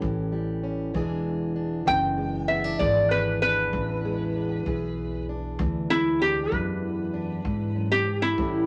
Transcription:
0.00 0.92 A1 medium
0.00 0.94 A2 medium
0.00 0.94 E3 medium
0.00 0.31 G3 medium
0.00 0.62 C#4 medium
0.00 0.91 G4 medium
0.00 kick medium
0.32 0.95 G3 medium
0.64 0.91 C#4 medium
0.94 1.85 E1 medium
0.94 2.80 E2 medium
0.94 1.85 E3 medium
0.94 2.17 G#3 medium
0.94 1.55 D4 medium
0.94 2.81 G#4 medium
0.94 kick medium
1.56 2.48 D4 medium
1.86 2.77 F#1 loud
1.86 3.73 E3 medium
1.86 2.48 G5 loud
1.86 kick medium
2.18 4.04 G#3 medium
2.48 2.64 B3 medium
2.48 2.79 E5 medium
2.64 3.41 D4 soft
2.79 3.70 G#1 medium
2.79 4.65 E2 medium
2.79 4.63 G#4 medium
2.79 3.10 D5 medium
2.79 kick medium
3.11 3.41 B4 medium
3.42 4.35 D4 medium
3.42 5.24 B4 medium
3.73 4.63 A1 medium
3.73 5.32 E3 medium
3.73 kick medium
4.05 4.63 G#3 medium
4.36 4.63 D4 medium
4.66 5.56 B1 medium
4.66 6.52 E2 medium
4.66 6.53 G#4 medium
4.66 kick medium
5.29 6.20 D4 medium
5.59 6.49 D2 loud
5.59 8.38 E3 medium
5.59 kick medium
5.90 8.35 G#3 medium
5.90 6.20 E4 loud
6.21 7.12 D4 medium
6.21 6.53 G4 medium
6.52 7.43 E2 medium
6.52 7.42 F#2 medium
6.52 7.88 B4 medium
6.52 kick medium
7.14 8.34 D4 medium
7.44 7.75 E2 medium
7.44 8.35 G#2 medium
7.44 kick medium
7.75 8.06 F#2 medium
7.92 8.22 G4 medium
8.07 8.38 G#2 medium
8.22 8.66 E4 medium
8.37 8.66 A2 medium
8.37 8.66 E3 medium
8.37 8.66 G3 medium
8.37 8.66 C#4 medium
8.37 kick medium

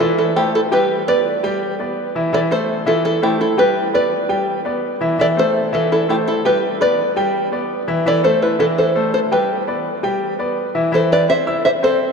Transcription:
0.00 0.29 E3 loud
0.00 0.29 E4 medium
0.00 0.17 F4 medium
0.00 0.17 A4 loud
0.00 0.30 E5 medium
0.18 0.35 E4 medium
0.18 0.36 A4 medium
0.36 0.65 A3 medium
0.36 0.53 E4 medium
0.36 0.53 G4 loud
0.36 0.65 A4 medium
0.36 0.65 C5 medium
0.55 0.60 E4 medium
0.55 0.60 A4 medium
0.71 1.01 G3 medium
0.71 1.01 G4 loud
0.71 1.05 G4 medium
0.71 1.05 B4 loud
0.71 1.01 G5 medium
1.08 1.37 B3 medium
1.08 1.37 B4 medium
1.08 2.11 B4 medium
1.08 2.11 D5 loud
1.08 1.37 D5 medium
1.43 1.73 G3 medium
1.43 1.73 G4 loud
1.43 1.73 G5 loud
1.79 2.09 B3 medium
1.79 2.09 B4 medium
1.79 2.09 D5 medium
2.15 2.30 E3 medium
2.15 2.30 E4 medium
2.15 2.30 E5 medium
2.33 2.47 E3 loud
2.33 2.48 E4 medium
2.33 2.39 A4 medium
2.33 2.39 D5 loud
2.33 2.48 E5 medium
2.51 2.80 A3 medium
2.51 2.80 A4 medium
2.51 2.84 A4 medium
2.51 2.80 C5 medium
2.51 2.85 C5 loud
2.86 3.16 E3 medium
2.86 3.16 E4 loud
2.86 3.03 F4 medium
2.86 3.04 A4 medium
2.86 3.16 E5 medium
3.05 3.21 E4 medium
3.05 3.23 A4 medium
3.22 3.51 A3 medium
3.22 3.39 E4 medium
3.22 3.39 G4 loud
3.22 3.52 A4 medium
3.22 3.52 C5 medium
3.41 3.57 E4 medium
3.41 3.59 A4 medium
3.57 3.87 G3 loud
3.57 3.87 G4 medium
3.57 3.92 G4 medium
3.57 3.92 B4 loud
3.57 3.87 G5 medium
3.93 4.23 B3 medium
3.93 4.23 B4 medium
3.93 4.98 B4 medium
3.93 4.23 D5 medium
3.93 4.98 D5 loud
4.29 4.59 G3 medium
4.29 4.59 G4 medium
4.29 4.59 G5 medium
4.65 4.95 B3 medium
4.65 4.95 B4 medium
4.65 4.95 D5 medium
5.01 5.16 E3 medium
5.01 5.16 E4 medium
5.01 5.16 E5 medium
5.19 5.34 E3 medium
5.19 5.34 E4 medium
5.19 5.26 A4 medium
5.19 5.26 D5 loud
5.19 5.34 E5 medium
5.37 5.66 A3 medium
5.37 5.66 A4 medium
5.37 5.71 A4 medium
5.37 5.67 C5 medium
5.37 5.71 C5 loud
5.73 6.02 E3 medium
5.73 6.02 E4 medium
5.73 5.90 F4 medium
5.73 5.91 A4 medium
5.73 6.02 E5 medium
5.92 6.08 E4 medium
5.92 6.10 A4 medium
6.08 6.38 A3 medium
6.08 6.15 E4 medium
6.08 6.15 G4 medium
6.08 6.38 A4 medium
6.08 6.38 C5 medium
6.28 6.44 E4 medium
6.28 6.46 A4 loud
6.45 6.74 G3 loud
6.45 6.74 G4 medium
6.45 6.78 G4 medium
6.45 6.79 B4 medium
6.45 6.75 G5 loud
6.81 7.10 B3 medium
6.81 7.10 B4 medium
6.81 7.84 B4 medium
6.81 7.10 D5 medium
6.81 7.84 D5 loud
7.16 7.46 G3 loud
7.16 7.46 G4 medium
7.16 7.46 G5 loud
7.52 7.81 B3 medium
7.52 7.82 B4 medium
7.52 7.82 D5 medium
7.88 8.02 E3 loud
7.88 8.03 E4 medium
7.88 8.03 E5 medium
8.06 8.21 E3 medium
8.06 8.21 E4 medium
8.06 8.23 A4 medium
8.06 8.24 D5 loud
8.06 8.21 E5 loud
8.24 8.53 A3 medium
8.24 8.53 A4 medium
8.24 8.41 A4 medium
8.24 8.53 C5 medium
8.24 8.41 C5 medium
8.42 8.59 E4 medium
8.42 8.59 B4 medium
8.59 8.89 E3 medium
8.59 8.89 E4 medium
8.59 8.65 F4 medium
8.59 8.65 A4 loud
8.59 8.89 E5 medium
8.78 9.12 A4 medium
8.78 9.13 C5 medium
8.95 9.25 A3 medium
8.95 9.25 A4 medium
8.95 9.25 C5 medium
9.14 9.19 A4 medium
9.14 9.19 C5 medium
9.32 9.61 G3 medium
9.32 9.61 G4 medium
9.32 10.71 G4 medium
9.32 10.71 B4 medium
9.32 9.61 G5 medium
9.68 9.97 B3 medium
9.68 9.97 B4 medium
9.68 9.97 D5 medium
10.03 10.32 G3 medium
10.03 10.32 G4 medium
10.03 10.33 G5 loud
10.39 10.68 B3 medium
10.39 10.68 B4 medium
10.39 10.69 D5 medium
10.75 10.89 E3 medium
10.75 10.89 E4 medium
10.75 10.90 E5 medium
10.92 11.21 E3 medium
10.92 11.22 E4 medium
10.92 11.10 A4 medium
10.92 11.12 C5 medium
10.92 11.22 E5 medium
11.12 11.28 B4 medium
11.12 11.28 D5 loud
11.29 11.43 C4 medium
11.29 11.43 C5 medium
11.29 11.62 C5 medium
11.29 11.62 E5 loud
11.29 11.44 C6 medium
11.47 11.76 E4 medium
11.47 11.76 E5 medium
11.47 11.76 E6 medium
11.65 11.71 C5 medium
11.65 11.70 E5 loud
11.83 12.12 C4 medium
11.83 12.12 A4 medium
11.83 12.12 C5 medium
11.83 12.12 C5 loud
11.83 12.12 C6 medium

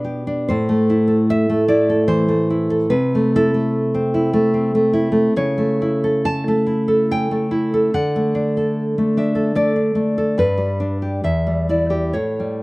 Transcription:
0.00 0.47 B2 soft
0.00 0.49 B3 soft
0.00 0.26 D4 soft
0.04 0.50 G4 soft
0.27 0.49 D4 soft
0.48 2.88 A2 medium
0.48 1.27 C5 medium
0.69 1.48 A3 soft
0.90 1.68 E4 soft
1.08 1.88 A4 soft
1.30 1.68 E5 medium
1.49 2.27 A3 soft
1.68 2.49 E4 soft
1.68 2.07 D5 medium
1.90 2.69 A4 soft
2.08 2.90 E3 soft
2.08 2.88 C5 medium
2.28 2.91 A3 soft
2.50 2.92 E4 soft
2.70 2.92 A4 soft
2.90 5.28 C3 soft
2.90 3.30 B4 medium
3.15 3.53 A3 soft
3.36 4.13 E4 soft
3.36 5.30 A4 medium
3.54 4.32 A3 soft
3.94 4.53 C4 soft
4.14 4.92 E4 soft
4.33 4.74 A3 soft
4.54 5.34 C4 soft
4.75 5.11 A3 soft
4.93 5.33 E4 soft
5.12 5.32 A3 soft
5.36 7.88 C#3 medium
5.36 6.22 C#5 medium
5.58 6.47 A3 soft
5.82 6.65 E4 soft
6.04 6.87 A4 soft
6.25 7.05 A5 medium
6.48 7.30 A3 soft
6.67 7.50 E4 soft
6.88 7.72 A4 soft
7.11 7.93 C#4 soft
7.11 7.89 G5 medium
7.31 7.92 A3 soft
7.51 7.92 E4 soft
7.74 7.93 A4 soft
7.94 10.35 D3 soft
7.94 9.12 F#5 medium
8.16 8.97 A3 soft
8.35 9.16 D4 soft
8.57 9.34 A4 soft
8.98 9.54 A3 soft
9.17 9.75 D4 soft
9.17 9.55 E5 medium
9.35 10.17 A4 soft
9.55 9.94 A3 soft
9.55 10.35 D5 medium
9.76 10.38 D4 soft
9.95 10.37 A3 soft
10.18 10.38 A4 soft
10.38 11.22 G2 soft
10.38 11.21 B4 medium
10.58 11.23 G3 soft
10.80 11.24 D4 soft
11.02 11.24 G4 soft
11.24 12.12 E2 soft
11.24 11.67 E5 medium
11.47 12.15 G3 soft
11.69 12.15 E4 soft
11.69 12.13 D5 soft
11.90 12.14 G4 soft
12.13 12.63 A2 soft
12.13 12.63 C#5 soft
12.40 12.63 G3 soft

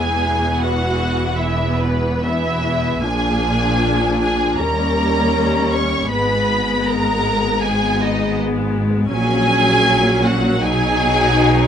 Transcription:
0.00 3.00 E1 soft
0.00 3.01 E2 soft
0.00 1.35 E3 soft
0.00 1.35 B3 soft
0.00 0.58 G#4 soft
0.00 0.58 G#5 medium
0.58 1.39 F#4 soft
0.58 1.38 F#5 medium
1.38 2.22 E3 soft
1.38 2.23 B3 soft
1.38 1.81 E4 soft
1.38 1.81 E5 soft
1.80 2.26 B3 soft
1.80 2.24 B4 soft
2.23 3.02 E3 soft
2.23 2.63 B3 soft
2.23 3.05 E4 soft
2.23 3.04 E5 medium
2.64 3.03 B3 soft
3.04 4.58 A#1 soft
3.04 4.59 A#2 soft
3.04 4.58 F3 soft
3.04 4.58 D4 soft
3.04 4.18 G#4 medium
3.04 4.18 G#5 medium
4.21 4.59 G#4 soft
4.21 4.58 G#5 medium
4.57 6.10 D#2 soft
4.57 6.11 G3 soft
4.57 6.11 C#4 soft
4.57 5.73 A#4 medium
4.57 5.70 A#5 medium
5.72 6.11 C#5 medium
5.72 6.10 C#6 medium
6.10 9.09 G#1 soft
6.10 9.09 G#2 soft
6.10 7.61 G#3 soft
6.10 7.61 B3 soft
6.10 6.86 B4 medium
6.10 6.85 B5 medium
6.86 7.64 A#4 medium
6.86 7.63 A#5 medium
7.62 9.09 G#3 soft
7.62 9.09 B3 soft
7.62 8.01 G#4 medium
7.62 8.01 G#5 medium
8.00 8.39 D#4 soft
8.00 8.38 D#5 medium
9.11 10.61 A#1 medium
9.11 10.62 A#2 medium
9.11 10.62 F#3 medium
9.11 10.62 C#4 soft
9.11 10.23 G#4 medium
9.11 10.22 G#5 medium
10.25 10.65 F#4 soft
10.25 10.64 F#5 medium
10.62 11.67 B1 soft
10.62 11.67 B2 medium
10.62 11.67 F#3 medium
10.62 11.67 D#4 medium
10.62 11.67 G#4 medium
10.62 11.67 G#5 medium

